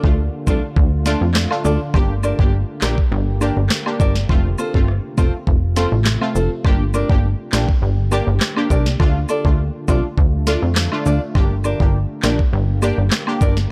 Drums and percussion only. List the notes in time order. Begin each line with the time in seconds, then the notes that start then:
0.04 kick
0.47 kick, cabasa, high woodblock
0.76 kick
1.06 snare, cabasa, high woodblock
1.34 cross-stick, snare, clap
1.51 high woodblock
1.65 cabasa
1.94 kick, high woodblock
2.23 cabasa, high woodblock
2.39 kick
2.82 snare, clap, cabasa, high woodblock
2.98 kick
3.41 cabasa, high woodblock
3.70 cross-stick, snare, clap
3.86 high woodblock
4.00 kick, cabasa
4.15 snare
4.29 kick, high woodblock
4.58 cabasa, high woodblock
4.74 kick
4.88 cross-stick
5.18 kick, cabasa, high woodblock
5.47 kick
5.76 snare, cabasa, high woodblock
6.05 snare, clap
6.21 high woodblock
6.36 cabasa
6.65 kick, high woodblock
6.94 cabasa, high woodblock
7.09 kick
7.52 snare, clap, cabasa, high woodblock
7.69 kick
8.12 cabasa, high woodblock
8.40 cross-stick, snare, clap
8.56 high woodblock
8.70 kick, cabasa
8.86 snare
9.00 kick, high woodblock
9.29 cabasa, high woodblock
9.45 kick
9.88 kick, cabasa, high woodblock
10.18 kick
10.47 snare, cabasa, high woodblock
10.75 cross-stick, snare, clap
10.92 high woodblock
11.06 cabasa
11.35 kick, high woodblock
11.64 cabasa, high woodblock
11.80 kick
12.23 snare, clap, cabasa, high woodblock
12.39 kick
12.82 cabasa, high woodblock
13.11 cross-stick, snare, clap
13.27 high woodblock
13.41 kick, cabasa
13.57 snare